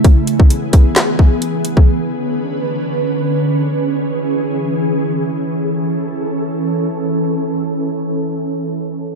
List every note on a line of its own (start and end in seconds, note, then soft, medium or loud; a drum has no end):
0.04 1.86 E3 medium
0.04 1.86 B3 medium
0.04 1.86 G#4 medium
0.04 kick loud
0.04 closed hi-hat medium
0.27 closed hi-hat medium
0.40 kick loud
0.50 closed hi-hat medium
0.73 kick loud
0.73 closed hi-hat medium
0.96 snare loud
0.96 clap medium
0.96 closed hi-hat medium
1.19 kick medium
1.42 closed hi-hat medium
1.65 closed hi-hat medium
1.77 kick medium
1.88 3.69 D3 medium
1.88 5.50 C#4 medium
1.88 3.69 B4 medium
3.71 5.52 E3 medium
3.71 5.52 G#4 medium
5.54 9.15 E3 medium
5.54 9.15 C#4 medium
5.54 9.15 A4 medium